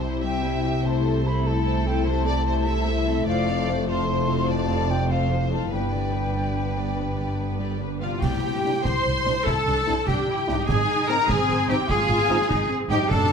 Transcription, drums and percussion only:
8.22 concert bass drum, snare, crash
8.85 concert bass drum, snare
9.27 snare
9.46 concert bass drum, snare
9.87 snare
10.08 concert bass drum, snare
10.49 snare
10.69 concert bass drum, snare
11.09 snare
11.29 concert bass drum, snare
11.69 snare
11.89 concert bass drum, snare
12.50 concert bass drum, snare
12.91 snare
13.11 concert bass drum, snare

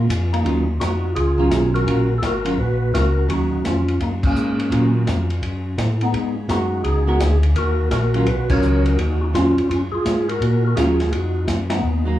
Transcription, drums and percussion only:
0.10 kick, hi-hat pedal, ride
0.34 ride
0.45 kick, ride
0.81 kick, snare, hi-hat pedal, ride
1.16 kick, ride
1.51 kick, snare, hi-hat pedal, ride
1.75 ride
1.87 kick, ride
2.22 kick, snare, hi-hat pedal, ride
2.45 ride
2.58 kick
2.94 kick, snare, hi-hat pedal, ride
3.29 kick, ride
3.65 kick, snare, hi-hat pedal, ride
3.88 ride
4.00 kick, ride
4.23 kick, crash
4.36 hi-hat pedal
4.60 ride
4.71 kick, ride
5.07 kick, snare, hi-hat pedal, ride
5.30 ride
5.42 kick, ride
5.78 kick, snare, hi-hat pedal, ride
6.01 ride
6.13 kick, ride
6.49 kick, snare, hi-hat pedal, ride
6.84 kick, ride
7.20 kick, snare, hi-hat pedal, ride
7.43 ride
7.55 kick, ride
7.91 kick, snare, hi-hat pedal, ride
8.14 ride
8.26 kick, ride
8.50 kick, crash
8.62 hi-hat pedal
8.86 ride
8.98 kick, ride
9.34 kick, snare, hi-hat pedal, ride
9.58 ride
9.70 kick, ride
10.05 kick, snare, hi-hat pedal, ride
10.29 ride
10.41 kick, ride
10.77 kick, snare, hi-hat pedal, ride
11.00 snare, ride
11.12 kick, ride
11.48 kick, snare, hi-hat pedal, ride
11.70 snare, ride

